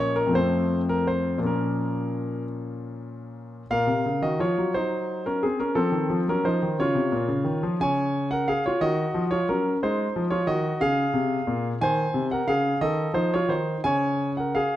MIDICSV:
0, 0, Header, 1, 2, 480
1, 0, Start_track
1, 0, Key_signature, -5, "minor"
1, 0, Tempo, 745342
1, 921, Time_signature, 6, 3, 24, 8
1, 2373, Tempo, 697674
1, 3333, Tempo, 672646
1, 8133, Tempo, 686499
1, 10200, End_track
2, 0, Start_track
2, 0, Title_t, "Grand piano"
2, 0, Program_c, 0, 0
2, 0, Note_on_c, 0, 46, 69
2, 0, Note_on_c, 0, 53, 63
2, 0, Note_on_c, 0, 58, 62
2, 0, Note_on_c, 0, 61, 63
2, 0, Note_on_c, 0, 73, 99
2, 101, Note_off_c, 0, 73, 0
2, 102, Note_on_c, 0, 70, 92
2, 164, Note_off_c, 0, 46, 0
2, 171, Note_off_c, 0, 53, 0
2, 172, Note_on_c, 0, 41, 66
2, 175, Note_off_c, 0, 58, 0
2, 184, Note_off_c, 0, 61, 0
2, 184, Note_on_c, 0, 53, 54
2, 200, Note_on_c, 0, 57, 52
2, 213, Note_off_c, 0, 70, 0
2, 213, Note_on_c, 0, 60, 54
2, 226, Note_on_c, 0, 72, 101
2, 517, Note_off_c, 0, 72, 0
2, 575, Note_on_c, 0, 70, 89
2, 686, Note_off_c, 0, 70, 0
2, 692, Note_on_c, 0, 72, 84
2, 881, Note_off_c, 0, 41, 0
2, 888, Note_off_c, 0, 53, 0
2, 890, Note_on_c, 0, 46, 62
2, 892, Note_off_c, 0, 72, 0
2, 896, Note_off_c, 0, 57, 0
2, 897, Note_on_c, 0, 53, 51
2, 903, Note_off_c, 0, 60, 0
2, 915, Note_on_c, 0, 58, 49
2, 929, Note_on_c, 0, 61, 51
2, 943, Note_on_c, 0, 70, 91
2, 1559, Note_off_c, 0, 70, 0
2, 2333, Note_off_c, 0, 46, 0
2, 2336, Note_off_c, 0, 53, 0
2, 2345, Note_off_c, 0, 58, 0
2, 2352, Note_off_c, 0, 61, 0
2, 2387, Note_on_c, 0, 46, 67
2, 2389, Note_on_c, 0, 77, 104
2, 2400, Note_on_c, 0, 70, 72
2, 2494, Note_off_c, 0, 46, 0
2, 2500, Note_on_c, 0, 48, 62
2, 2610, Note_off_c, 0, 48, 0
2, 2630, Note_on_c, 0, 49, 65
2, 2722, Note_off_c, 0, 70, 0
2, 2736, Note_off_c, 0, 49, 0
2, 2740, Note_off_c, 0, 77, 0
2, 2743, Note_on_c, 0, 51, 62
2, 2745, Note_on_c, 0, 75, 87
2, 2755, Note_on_c, 0, 66, 64
2, 2853, Note_off_c, 0, 51, 0
2, 2857, Note_off_c, 0, 66, 0
2, 2860, Note_off_c, 0, 75, 0
2, 2861, Note_on_c, 0, 53, 63
2, 2868, Note_on_c, 0, 73, 85
2, 2870, Note_on_c, 0, 65, 65
2, 2972, Note_off_c, 0, 53, 0
2, 2989, Note_on_c, 0, 54, 62
2, 3087, Note_off_c, 0, 65, 0
2, 3102, Note_on_c, 0, 72, 88
2, 3103, Note_off_c, 0, 73, 0
2, 3114, Note_on_c, 0, 63, 66
2, 3441, Note_off_c, 0, 63, 0
2, 3459, Note_off_c, 0, 72, 0
2, 3461, Note_on_c, 0, 70, 80
2, 3468, Note_on_c, 0, 61, 64
2, 3574, Note_off_c, 0, 61, 0
2, 3579, Note_off_c, 0, 70, 0
2, 3582, Note_on_c, 0, 68, 79
2, 3588, Note_off_c, 0, 54, 0
2, 3589, Note_on_c, 0, 60, 57
2, 3695, Note_off_c, 0, 60, 0
2, 3700, Note_off_c, 0, 68, 0
2, 3701, Note_on_c, 0, 70, 82
2, 3707, Note_on_c, 0, 61, 62
2, 3813, Note_on_c, 0, 53, 69
2, 3813, Note_on_c, 0, 69, 90
2, 3816, Note_off_c, 0, 61, 0
2, 3819, Note_on_c, 0, 60, 68
2, 3820, Note_off_c, 0, 70, 0
2, 3931, Note_on_c, 0, 51, 62
2, 3932, Note_off_c, 0, 53, 0
2, 4052, Note_off_c, 0, 51, 0
2, 4058, Note_on_c, 0, 53, 68
2, 4128, Note_off_c, 0, 69, 0
2, 4161, Note_off_c, 0, 60, 0
2, 4177, Note_off_c, 0, 53, 0
2, 4189, Note_on_c, 0, 54, 64
2, 4198, Note_on_c, 0, 70, 88
2, 4206, Note_on_c, 0, 61, 63
2, 4303, Note_off_c, 0, 54, 0
2, 4306, Note_on_c, 0, 53, 64
2, 4310, Note_off_c, 0, 61, 0
2, 4310, Note_on_c, 0, 72, 85
2, 4314, Note_off_c, 0, 70, 0
2, 4315, Note_on_c, 0, 63, 69
2, 4421, Note_off_c, 0, 53, 0
2, 4435, Note_on_c, 0, 51, 64
2, 4535, Note_off_c, 0, 63, 0
2, 4545, Note_off_c, 0, 51, 0
2, 4549, Note_off_c, 0, 72, 0
2, 4555, Note_on_c, 0, 49, 68
2, 4559, Note_on_c, 0, 73, 95
2, 4569, Note_on_c, 0, 65, 69
2, 4664, Note_off_c, 0, 49, 0
2, 4668, Note_on_c, 0, 48, 67
2, 4780, Note_off_c, 0, 48, 0
2, 4789, Note_on_c, 0, 46, 65
2, 4900, Note_off_c, 0, 46, 0
2, 4905, Note_on_c, 0, 49, 66
2, 5019, Note_off_c, 0, 49, 0
2, 5020, Note_on_c, 0, 51, 64
2, 5136, Note_off_c, 0, 51, 0
2, 5152, Note_on_c, 0, 53, 68
2, 5247, Note_off_c, 0, 65, 0
2, 5263, Note_off_c, 0, 53, 0
2, 5270, Note_off_c, 0, 73, 0
2, 5275, Note_on_c, 0, 49, 68
2, 5281, Note_on_c, 0, 80, 107
2, 5295, Note_on_c, 0, 73, 80
2, 5616, Note_off_c, 0, 73, 0
2, 5633, Note_off_c, 0, 80, 0
2, 5636, Note_on_c, 0, 78, 93
2, 5649, Note_on_c, 0, 70, 68
2, 5750, Note_off_c, 0, 70, 0
2, 5751, Note_off_c, 0, 78, 0
2, 5758, Note_on_c, 0, 77, 93
2, 5766, Note_on_c, 0, 68, 73
2, 5790, Note_off_c, 0, 49, 0
2, 5868, Note_off_c, 0, 68, 0
2, 5872, Note_off_c, 0, 77, 0
2, 5886, Note_on_c, 0, 73, 87
2, 5898, Note_on_c, 0, 65, 68
2, 5993, Note_on_c, 0, 51, 72
2, 5994, Note_off_c, 0, 65, 0
2, 5996, Note_off_c, 0, 73, 0
2, 5996, Note_on_c, 0, 75, 102
2, 6008, Note_on_c, 0, 66, 77
2, 6162, Note_off_c, 0, 51, 0
2, 6233, Note_on_c, 0, 53, 72
2, 6296, Note_off_c, 0, 75, 0
2, 6331, Note_off_c, 0, 66, 0
2, 6349, Note_on_c, 0, 73, 94
2, 6359, Note_on_c, 0, 65, 69
2, 6402, Note_off_c, 0, 53, 0
2, 6463, Note_off_c, 0, 65, 0
2, 6466, Note_off_c, 0, 73, 0
2, 6478, Note_on_c, 0, 54, 61
2, 6478, Note_on_c, 0, 70, 86
2, 6490, Note_on_c, 0, 61, 65
2, 6644, Note_off_c, 0, 54, 0
2, 6674, Note_off_c, 0, 70, 0
2, 6699, Note_off_c, 0, 61, 0
2, 6720, Note_on_c, 0, 56, 78
2, 6723, Note_on_c, 0, 72, 88
2, 6727, Note_on_c, 0, 63, 66
2, 6884, Note_off_c, 0, 56, 0
2, 6958, Note_on_c, 0, 53, 72
2, 7015, Note_off_c, 0, 72, 0
2, 7044, Note_off_c, 0, 63, 0
2, 7061, Note_on_c, 0, 73, 93
2, 7070, Note_on_c, 0, 65, 69
2, 7120, Note_off_c, 0, 53, 0
2, 7172, Note_off_c, 0, 65, 0
2, 7176, Note_off_c, 0, 73, 0
2, 7178, Note_on_c, 0, 51, 67
2, 7180, Note_on_c, 0, 75, 101
2, 7192, Note_on_c, 0, 66, 76
2, 7347, Note_off_c, 0, 51, 0
2, 7404, Note_off_c, 0, 66, 0
2, 7414, Note_off_c, 0, 75, 0
2, 7418, Note_on_c, 0, 49, 70
2, 7422, Note_on_c, 0, 77, 108
2, 7427, Note_on_c, 0, 68, 80
2, 7589, Note_off_c, 0, 49, 0
2, 7655, Note_on_c, 0, 48, 73
2, 7827, Note_off_c, 0, 48, 0
2, 7894, Note_on_c, 0, 46, 65
2, 8031, Note_off_c, 0, 77, 0
2, 8067, Note_off_c, 0, 46, 0
2, 8112, Note_off_c, 0, 68, 0
2, 8135, Note_on_c, 0, 51, 73
2, 8139, Note_on_c, 0, 80, 114
2, 8152, Note_on_c, 0, 72, 89
2, 8306, Note_off_c, 0, 51, 0
2, 8366, Note_on_c, 0, 48, 72
2, 8441, Note_off_c, 0, 80, 0
2, 8476, Note_off_c, 0, 72, 0
2, 8487, Note_on_c, 0, 78, 85
2, 8498, Note_on_c, 0, 70, 64
2, 8541, Note_off_c, 0, 48, 0
2, 8598, Note_on_c, 0, 49, 68
2, 8601, Note_on_c, 0, 77, 99
2, 8606, Note_off_c, 0, 70, 0
2, 8609, Note_off_c, 0, 78, 0
2, 8612, Note_on_c, 0, 68, 76
2, 8775, Note_off_c, 0, 49, 0
2, 8808, Note_off_c, 0, 77, 0
2, 8833, Note_off_c, 0, 68, 0
2, 8835, Note_on_c, 0, 51, 73
2, 8837, Note_on_c, 0, 75, 100
2, 8844, Note_on_c, 0, 69, 75
2, 9012, Note_off_c, 0, 51, 0
2, 9044, Note_off_c, 0, 75, 0
2, 9063, Note_on_c, 0, 53, 70
2, 9068, Note_off_c, 0, 69, 0
2, 9068, Note_on_c, 0, 72, 96
2, 9075, Note_on_c, 0, 63, 70
2, 9192, Note_off_c, 0, 63, 0
2, 9197, Note_off_c, 0, 72, 0
2, 9203, Note_on_c, 0, 73, 89
2, 9216, Note_on_c, 0, 65, 70
2, 9244, Note_off_c, 0, 53, 0
2, 9306, Note_on_c, 0, 51, 62
2, 9312, Note_on_c, 0, 72, 85
2, 9317, Note_on_c, 0, 63, 63
2, 9323, Note_off_c, 0, 65, 0
2, 9324, Note_off_c, 0, 73, 0
2, 9487, Note_off_c, 0, 51, 0
2, 9523, Note_off_c, 0, 72, 0
2, 9546, Note_off_c, 0, 63, 0
2, 9555, Note_on_c, 0, 80, 111
2, 9556, Note_on_c, 0, 49, 75
2, 9569, Note_on_c, 0, 73, 84
2, 9870, Note_off_c, 0, 80, 0
2, 9907, Note_off_c, 0, 73, 0
2, 9926, Note_on_c, 0, 78, 78
2, 9944, Note_on_c, 0, 70, 61
2, 10049, Note_on_c, 0, 77, 89
2, 10050, Note_off_c, 0, 78, 0
2, 10051, Note_off_c, 0, 70, 0
2, 10058, Note_on_c, 0, 68, 73
2, 10083, Note_off_c, 0, 49, 0
2, 10200, Note_off_c, 0, 68, 0
2, 10200, Note_off_c, 0, 77, 0
2, 10200, End_track
0, 0, End_of_file